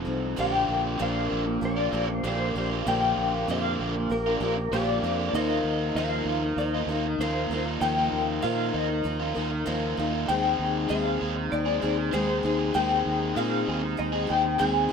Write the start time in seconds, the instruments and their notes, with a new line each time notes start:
Already playing: overdriven electric guitar F3 C4 D#4 A4
0.05 fingered electric bass C2, steel-string acoustic guitar C4 D#4 A4
0.37 fingered electric bass A#1, overdriven electric guitar A#2 D3 A#3 D4 F4, steel-string acoustic guitar F3 G4, tonewheel organ A#4 F5 G5 D6, clean electric guitar G5
0.53 overdriven electric guitar A#3 D4 F4
0.69 fingered electric bass A#1
0.98 fingered electric bass A#1, overdriven electric guitar A#2 D3 A#3 D4 F4, steel-string acoustic guitar F3 G4
1.02 clean electric guitar F5
1.30 fingered electric bass A#1, overdriven electric guitar D3 A#3 D4 F4
1.45 muted overdriven electric guitar stroke
1.61 fingered electric bass A#1, steel-string acoustic guitar F3 A#3 D4 G4, clean electric guitar D5
1.76 overdriven electric guitar A#3 D4 F4
1.92 fingered electric bass A#1, overdriven electric guitar D3 A#3 D4 F4, steel-string acoustic guitar F3 G4
2.08 muted overdriven electric guitar stroke
2.13 clean electric guitar C5
2.23 fingered electric bass A#1, overdriven electric guitar A#2 D3 A#3 D4 F4, steel-string acoustic guitar F3 G4
2.28 clean electric guitar C5
2.55 fingered electric bass A#1, overdriven electric guitar D3 A#3 D4 F4, steel-string acoustic guitar F3 G4
2.70 overdriven electric guitar A#3 D4 F4
2.86 fingered electric bass A#1, overdriven electric guitar A#2 D3 A#3 D4 F4, steel-string acoustic guitar F3 G4, clean electric guitar G5
3.01 overdriven electric guitar A#3 D4 F4
3.17 fingered electric bass A#1
3.48 fingered electric bass F2, overdriven electric guitar A#2 D3 A#3 D4 F4, steel-string acoustic guitar F3 G4, clean electric guitar F5
3.79 fingered electric bass A#1, overdriven electric guitar D3 A#3 D4 F4
3.96 muted overdriven electric guitar stroke
4.10 fingered electric bass A#1, steel-string acoustic guitar F3 A#3 D4 G4, clean electric guitar A#4
4.26 overdriven electric guitar A#3 D4 F4
4.40 fingered electric bass A#1, overdriven electric guitar D3 A#3 D4 F4, steel-string acoustic guitar F3 G4
4.57 muted overdriven electric guitar stroke
4.71 fingered electric bass A#1, overdriven electric guitar A#2 D3 A#3 D4 F4, steel-string acoustic guitar F3 G4, clean electric guitar D5
5.02 fingered electric bass F2, overdriven electric guitar D3 A#3 D4 F4, steel-string acoustic guitar G4
5.07 steel-string acoustic guitar F3
5.18 overdriven electric guitar A#3 D4 F4
5.27 clean electric guitar D5
5.33 fingered electric bass D#2, overdriven electric guitar D#3 A#3 D#4 F4, steel-string acoustic guitar F3 A#4, tonewheel organ D#4 A#5, clean electric guitar D#5
5.50 overdriven electric guitar A#3 D#4 F4
5.64 fingered electric bass D#2
5.95 fingered electric bass D#2, overdriven electric guitar D#3 A#3 D#4 F4, steel-string acoustic guitar F3 A#4, clean electric guitar F5
6.25 fingered electric bass D#2, overdriven electric guitar D#3 A#3 D#4 F4
6.44 muted overdriven electric guitar stroke
6.57 fingered electric bass D#2, steel-string acoustic guitar F3 A#3 D#4, clean electric guitar D#5
6.61 steel-string acoustic guitar A#4
6.74 overdriven electric guitar A#3 D#4 F4
6.87 fingered electric bass D#2, overdriven electric guitar D#3 A#3 D#4, steel-string acoustic guitar A#4
6.91 overdriven electric guitar F4
7.07 muted overdriven electric guitar stroke
7.19 fingered electric bass D#2, overdriven electric guitar D#3 A#3 D#4, steel-string acoustic guitar F3 A#4, clean electric guitar C5
7.23 overdriven electric guitar F4
7.50 fingered electric bass D#2, overdriven electric guitar D#3 A#3 D#4 F4, steel-string acoustic guitar A#4
7.65 overdriven electric guitar A#3 D#4 F4
7.81 fingered electric bass D#2, overdriven electric guitar D#3 A#3 D#4 F4, steel-string acoustic guitar F3 A#4, clean electric guitar G5
7.96 overdriven electric guitar A#3 D#4 F4
8.12 fingered electric bass D#2
8.42 fingered electric bass A#2, overdriven electric guitar D#3 A#3 D#4 F4, steel-string acoustic guitar F3 A#4, clean electric guitar F5
8.73 fingered electric bass D#2, overdriven electric guitar D#3 A#3 D#4 F4, clean electric guitar D#5
8.88 muted overdriven electric guitar stroke
9.04 fingered electric bass D#2, steel-string acoustic guitar F3 A#3 D#4 A#4
9.19 overdriven electric guitar A#3 D#4 F4
9.35 fingered electric bass D#2, overdriven electric guitar D#3 A#3 D#4 F4, steel-string acoustic guitar A#4
9.51 muted overdriven electric guitar stroke
9.66 fingered electric bass D#2, overdriven electric guitar D#3 A#3 D#4 F4, steel-string acoustic guitar F3 A#4
9.97 fingered electric bass D#2, overdriven electric guitar D#3 A#3 D#4 F4, steel-string acoustic guitar A#4
10.12 overdriven electric guitar A#3 D#4 F4
10.27 fingered electric bass D#2, overdriven electric guitar D#3 G#3 C4 G#4, steel-string acoustic guitar D#4, tonewheel organ G#4 C6, clean electric guitar G5
10.43 overdriven electric guitar G#3 C4 G#4
10.59 fingered electric bass D#2
10.88 fingered electric bass D#2, overdriven electric guitar D#3 G#3 C4 G#4, steel-string acoustic guitar D#4, clean electric guitar F5
11.19 fingered electric bass D#2, overdriven electric guitar D#3 G#3 C4 G#4
11.36 muted overdriven electric guitar stroke
11.52 fingered electric bass D#2, steel-string acoustic guitar G#3 C4 D#4 G#4, clean electric guitar D5
11.66 overdriven electric guitar G#3 C4 G#4
11.80 fingered electric bass D#2, overdriven electric guitar D#3 G#3 C4 G#4, steel-string acoustic guitar D#4
11.98 muted overdriven electric guitar stroke
12.11 fingered electric bass D#2, overdriven electric guitar D#3 G#3 C4 G#4, steel-string acoustic guitar D#4, clean electric guitar C5
12.44 fingered electric bass D#2, overdriven electric guitar D#3 G#3 C4 G#4, steel-string acoustic guitar D#4
12.59 overdriven electric guitar G#3 C4 G#4
12.74 fingered electric bass D#2, overdriven electric guitar D#3 G#3 C4 G#4, steel-string acoustic guitar D#4, clean electric guitar G5
12.89 overdriven electric guitar G#3 C4 G#4
13.06 fingered electric bass D#2
13.35 fingered electric bass A#2, overdriven electric guitar D#3 G#3 C4 G#4, steel-string acoustic guitar D#4, clean electric guitar F5
13.66 fingered electric bass D#2, overdriven electric guitar D#3 G#3 C4 G#4
13.83 muted overdriven electric guitar stroke
13.97 fingered electric bass D#2, steel-string acoustic guitar G#3 C4 D#4 G#4, clean electric guitar D#5
14.12 overdriven electric guitar G#3 C4 G#4
14.28 fingered electric bass D#2, overdriven electric guitar D#3 G#3 C4 G#4, steel-string acoustic guitar D#4, clean electric guitar G5
14.44 muted overdriven electric guitar stroke
14.58 fingered electric bass D#2, overdriven electric guitar D#3 G#3 C4 G#4, steel-string acoustic guitar D#4, clean electric guitar G#5
14.89 overdriven electric guitar D#3, steel-string acoustic guitar G#4